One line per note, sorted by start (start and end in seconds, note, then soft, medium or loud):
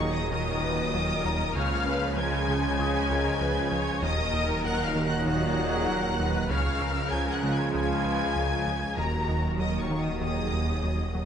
0.00 1.57 D#1 loud
0.00 1.52 D#2 medium
0.00 1.38 A#2 loud
0.00 1.55 A#2 loud
0.00 2.17 A#2 medium
0.00 1.51 D#3 loud
0.00 0.20 D#3 medium
0.00 1.38 F#3 loud
0.00 1.55 F#3 loud
0.00 0.19 A#3 medium
0.00 1.55 D#4 loud
0.00 1.56 D#4 medium
0.00 0.32 G#4 loud
0.00 0.10 C#5 loud
0.00 1.55 D#5 medium
0.00 1.58 F5 medium
0.00 0.12 C#6 loud
0.10 0.30 D#5 loud
0.10 0.31 D#6 loud
0.31 0.50 D#2 loud
0.31 0.50 D#3 loud
0.31 0.62 A#4 loud
0.31 1.53 D#5 loud
0.31 1.53 D#6 loud
0.63 0.81 D#2 medium
0.63 0.94 B4 loud
0.93 1.12 D#2 medium
0.93 1.12 F#3 medium
0.93 1.54 A#4 loud
1.25 1.43 D#2 medium
1.25 1.43 F#3 medium
1.25 3.07 A#5 medium
1.55 3.99 C#2 medium
1.55 4.04 C#2 loud
1.55 1.75 C#2 loud
1.55 3.99 C#3 loud
1.55 1.74 C#3 loud
1.55 3.99 C#3 loud
1.55 3.99 F3 loud
1.55 4.03 F3 loud
1.55 4.03 G#3 loud
1.55 3.85 C#4 loud
1.55 4.03 F4 medium
1.55 1.86 C#5 loud
1.55 4.03 C#5 loud
1.55 2.17 F5 loud
1.55 2.16 F6 loud
1.86 2.06 C#2 medium
1.86 2.05 C#4 medium
1.86 2.16 B4 loud
2.17 2.36 C#2 medium
2.17 2.36 F3 medium
2.17 3.85 G#3 loud
2.17 2.48 A#4 loud
2.17 4.03 G#5 loud
2.17 3.99 G#6 loud
2.48 2.67 C#3 medium
2.48 2.66 G#3 medium
2.48 2.78 G#4 loud
2.79 2.98 C#2 loud
2.79 2.97 C#3 loud
2.79 3.09 G#4 loud
2.79 4.61 D#6 medium
3.10 3.29 C#2 medium
3.10 3.41 A#4 loud
3.41 3.59 C#2 medium
3.41 3.59 F3 medium
3.41 3.72 B4 loud
3.72 3.90 C#2 medium
3.72 3.90 F3 medium
3.72 4.02 C#5 loud
4.02 6.52 D#1 loud
4.02 4.21 D#2 loud
4.02 6.46 D#2 loud
4.02 6.46 A#2 loud
4.02 6.51 A#2 medium
4.02 4.21 D#3 loud
4.02 6.46 D#3 loud
4.02 6.46 F#3 loud
4.02 6.50 F#3 loud
4.02 6.46 D#4 loud
4.02 6.51 D#4 medium
4.02 5.26 A#4 loud
4.02 4.63 D#5 loud
4.02 6.51 D#5 loud
4.02 4.64 D#6 loud
4.33 4.52 D#2 medium
4.33 4.52 D#4 medium
4.64 4.83 D#2 medium
4.64 4.83 F#3 medium
4.64 4.85 F#5 loud
4.64 4.85 F#6 loud
4.84 5.05 F5 loud
4.84 5.06 F6 loud
4.95 5.14 D#3 medium
4.95 5.14 A#3 medium
5.05 5.24 F#5 loud
5.05 5.25 F#6 loud
5.26 5.45 D#2 loud
5.26 5.45 D#3 loud
5.26 5.57 F#4 loud
5.26 6.47 F#5 loud
5.26 6.48 F#6 loud
5.57 5.76 D#2 medium
5.57 5.88 G#4 loud
5.88 6.07 D#2 medium
5.88 6.07 F#3 medium
5.88 6.19 A#4 loud
6.19 6.38 D#2 medium
6.19 6.38 F#3 medium
6.19 6.50 B4 loud
6.49 8.97 C#2 loud
6.49 8.99 C#2 medium
6.49 6.69 C#2 loud
6.49 8.80 C#3 loud
6.49 6.69 C#3 loud
6.49 8.98 C#3 loud
6.49 8.80 F3 loud
6.49 8.98 F3 medium
6.49 8.93 G#3 loud
6.49 8.98 G#3 medium
6.49 8.93 F4 loud
6.49 8.98 F4 medium
6.49 6.81 C#5 loud
6.49 8.98 C#5 medium
6.49 7.10 F5 loud
6.49 7.11 F6 loud
6.81 7.00 C#2 medium
6.81 7.00 C#4 medium
6.81 7.74 A#4 loud
7.11 7.31 C#2 medium
7.11 7.31 F3 medium
7.11 7.32 G#5 loud
7.11 7.33 G#6 loud
7.31 7.53 F#5 loud
7.31 7.54 F#6 loud
7.43 7.62 C#3 medium
7.43 7.61 G#3 medium
7.52 7.72 G#5 loud
7.52 7.73 G#6 loud
7.73 7.93 C#2 loud
7.73 7.92 C#3 loud
7.73 8.05 G#4 medium
7.73 8.95 G#5 loud
7.73 8.96 G#6 loud
8.05 8.24 C#2 medium
8.05 8.36 B4 loud
8.36 8.54 C#2 medium
8.36 8.54 F3 medium
8.36 8.67 A#4 medium
8.67 8.85 C#2 medium
8.67 8.85 F3 medium
8.67 8.98 G#4 medium
8.97 11.25 D#1 medium
8.97 9.16 D#2 loud
8.97 11.25 D#2 medium
8.97 11.25 A#2 loud
8.97 11.25 D#3 loud
8.97 11.25 D#3 medium
8.97 9.16 D#3 loud
8.97 11.25 D#3 medium
8.97 11.25 F#3 loud
8.97 11.25 F#3 medium
8.97 11.25 F#4 loud
8.97 9.58 F#4 medium
8.97 11.25 F#4 medium
8.97 9.59 A#4 loud
8.97 11.25 A#4 medium
8.97 9.58 A#5 loud
9.29 9.47 D#2 medium
9.29 9.47 D#4 medium
9.59 9.78 D#2 medium
9.59 9.78 F#3 medium
9.59 10.21 A#4 medium
9.59 9.80 D#5 loud
9.59 9.80 D#6 loud
9.80 10.00 C#5 medium
9.80 10.01 C#6 medium
9.90 10.09 D#3 medium
9.90 10.09 A#3 medium
10.00 10.20 D#5 medium
10.00 10.19 D#6 medium
10.21 10.40 D#2 loud
10.21 10.40 D#3 loud
10.21 11.25 G#4 medium
10.21 11.25 D#5 medium
10.21 11.25 D#6 loud
10.53 10.71 D#2 medium
10.83 11.02 D#2 medium
10.83 11.02 F#3 medium
11.14 11.25 D#2 medium
11.14 11.25 F#3 medium